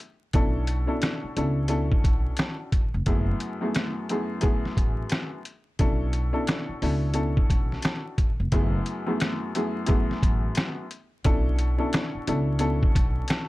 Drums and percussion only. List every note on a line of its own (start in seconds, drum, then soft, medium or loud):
0.00 closed hi-hat medium
0.33 kick loud
0.33 closed hi-hat medium
0.67 closed hi-hat medium
1.02 cross-stick medium
1.02 snare loud
1.02 closed hi-hat medium
1.37 closed hi-hat medium
1.68 closed hi-hat medium
1.92 kick medium
2.04 kick medium
2.04 closed hi-hat medium
2.37 cross-stick loud
2.37 snare loud
2.37 closed hi-hat medium
2.72 kick medium
2.72 closed hi-hat medium
3.06 kick loud
3.06 closed hi-hat medium
3.40 closed hi-hat medium
3.75 cross-stick medium
3.75 snare loud
3.75 closed hi-hat medium
4.09 closed hi-hat medium
4.41 kick medium
4.41 closed hi-hat medium
4.65 snare soft
4.77 kick medium
4.77 closed hi-hat medium
5.09 cross-stick loud
5.09 snare loud
5.09 closed hi-hat medium
5.45 closed hi-hat medium
5.79 kick loud
5.79 closed hi-hat medium
6.13 closed hi-hat medium
6.47 cross-stick medium
6.47 snare loud
6.47 closed hi-hat medium
6.82 open hi-hat medium
7.14 closed hi-hat medium
7.37 kick medium
7.50 kick medium
7.50 closed hi-hat medium
7.72 snare soft
7.82 cross-stick loud
7.82 snare loud
7.82 closed hi-hat loud
8.18 kick medium
8.18 closed hi-hat medium
8.52 kick loud
8.52 closed hi-hat medium
8.86 closed hi-hat medium
9.20 cross-stick loud
9.20 snare loud
9.20 closed hi-hat medium
9.55 closed hi-hat medium
9.86 kick medium
9.86 closed hi-hat medium
10.11 snare soft
10.23 kick medium
10.23 closed hi-hat medium
10.55 cross-stick loud
10.55 snare loud
10.55 closed hi-hat loud
10.91 closed hi-hat medium
11.24 kick loud
11.24 closed hi-hat medium
11.59 closed hi-hat medium
11.93 cross-stick medium
11.93 snare loud
11.93 closed hi-hat medium
12.27 closed hi-hat medium
12.59 closed hi-hat medium
12.83 kick loud
12.95 kick medium
12.95 closed hi-hat medium
13.28 cross-stick loud
13.28 snare loud
13.28 closed hi-hat loud